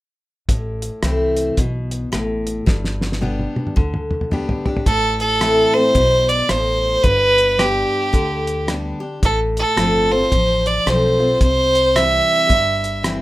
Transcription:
0.49 A1 A2, kick, closed hi-hat
0.82 closed hi-hat
1.03 C2 E3 A3 C4 E4, cross-stick, closed hi-hat
1.37 closed hi-hat
1.57 B1 B2, kick, closed hi-hat
1.91 closed hi-hat
2.12 A1 A2, cross-stick, closed hi-hat
2.47 closed hi-hat
2.66 G1 G2, kick, snare
2.85 snare
3.01 snare
3.12 snare
3.21 G3 B3 D4 G4, high tom
3.39 high tom
3.56 high tom
3.67 mid tom
3.76 D2 D3, kick, mid tom
3.94 mid tom
4.11 mid tom
4.21 mid tom
4.31 G3 B3 D4 G4, mid tom
4.49 floor tom
4.66 D4 G4, floor tom
4.77 floor tom
4.86 A1 A2 A4, kick, closed hi-hat
5.20 A4, closed hi-hat
5.40 E3 A3 C4 E4, cross-stick, closed hi-hat
5.74 C4 E4 C5
5.95 B1 B2, kick, closed hi-hat
6.29 D5, closed hi-hat
6.49 A1 A2 C5, cross-stick, closed hi-hat
7.03 G1 G2 B4, kick, closed hi-hat
7.38 closed hi-hat
7.58 G3 B3 D4 G4, cross-stick, closed hi-hat
8.13 D2 D3, kick, closed hi-hat
8.47 closed hi-hat
8.68 G3 B3 D4 G4, cross-stick, closed hi-hat
9.00 D4 G4
9.23 A1 A2 A4, kick, closed hi-hat
9.57 A4, closed hi-hat
9.77 G1 F3 A3 C4 F4, cross-stick, closed hi-hat
10.11 C4 F4 C5
10.32 A1 F3, kick, closed hi-hat
10.66 D5, closed hi-hat
10.86 B1 F3 A3 C4 F4 C5, cross-stick, closed hi-hat
11.20 C4 F4
11.41 C2 C3 C5, kick, closed hi-hat
11.75 closed hi-hat
11.95 E3 G3 C4 E4 E5, cross-stick, closed hi-hat
12.49 G1 G2, kick, closed hi-hat
12.84 closed hi-hat
13.03 E3 G3 C4 E4, cross-stick, closed hi-hat

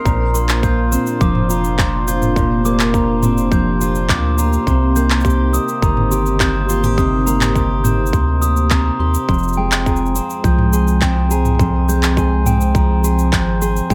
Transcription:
Already playing: A#3 C4 D#4 A#4 C5
0.05 A#1 A#2 D4 F4 A#5, kick, cabasa
0.34 A#3 C6, cabasa
0.49 clap, cabasa
0.63 F4 G6, kick, cabasa
0.92 C4 C6, cabasa
1.06 cabasa
1.21 F1 F3 D6, kick, cabasa
1.35 mid tom
1.50 F4 A#5, cabasa
1.64 cabasa
1.79 C4 C6, kick, clap, cabasa
2.07 F4 G6, cabasa
2.22 mid tom, cabasa
2.36 A#2 G4 C6, kick, cabasa
2.65 A#3 D6, cabasa
2.79 clap, cabasa
2.94 F4 A#5, kick, cabasa
3.23 C4 C6, mid tom, cabasa
3.38 cabasa
3.52 F3 G6, kick, cabasa
3.81 F4 C6, cabasa
3.95 cabasa
4.09 D2 C4 D6, kick, clap, cabasa
4.38 F4 A#5, cabasa
4.53 cabasa
4.67 C2 C3 D#4 C6, kick, cabasa
4.96 A#3 G6, cabasa
5.10 clap, cabasa
5.20 cabasa
5.25 G4 C6, kick, cabasa
5.30 cabasa
5.53 C4 D#6, cabasa
5.68 cabasa
5.82 G1 D#3 A#5, kick, cabasa
5.97 mid tom
6.11 G4 C6, cabasa
6.26 cabasa
6.40 C4 G6, kick, clap, cabasa
6.69 F4 C6, cabasa
6.83 G4, mid tom, cabasa
6.97 C3 D#6, kick, cabasa
7.26 A#3 A#5, cabasa
7.41 clap, mid tom, cabasa
7.55 G4 C6, kick, cabasa
7.84 C4 G6, mid tom, cabasa
8.06 cabasa
8.13 D2 C6, kick, cabasa
8.42 G4 D#6, cabasa
8.57 cabasa
8.70 C4 A#5, kick, clap, cabasa
8.99 D#2 G4 C6
9.14 cabasa
9.28 F1 F2 G#3 C4 F4 C5 C6, kick, cabasa
9.34 cabasa
9.38 cabasa
9.43 cabasa
9.48 cabasa
9.53 cabasa
9.57 G#3 G5
9.72 clap, cabasa
9.86 G#4 A#5, kick, cabasa
9.96 cabasa
10.06 cabasa
10.15 C4 C6, cabasa
10.30 cabasa
10.44 C2 F3 G6, kick, cabasa
10.59 mid tom
10.73 G#4 C6, cabasa
10.87 cabasa
11.01 C4 G5, kick, clap, cabasa
11.31 G#4 A#5, cabasa
11.45 mid tom, cabasa
11.55 mid tom
11.59 F2 G5 C6, kick, cabasa
11.89 G#3 G6, cabasa
12.03 clap, cabasa
12.17 G#4 C6, kick, cabasa
12.46 C4 G5, mid tom, cabasa
12.61 cabasa
12.75 F3 A#5, kick, cabasa
13.04 G#4 C6, cabasa
13.19 cabasa
13.33 G#1 C4 G6, kick, clap, cabasa
13.62 G#4 C6, cabasa
13.76 cabasa
13.90 G#1 G#3 A#3 D#4 G#4 G5, kick, cabasa

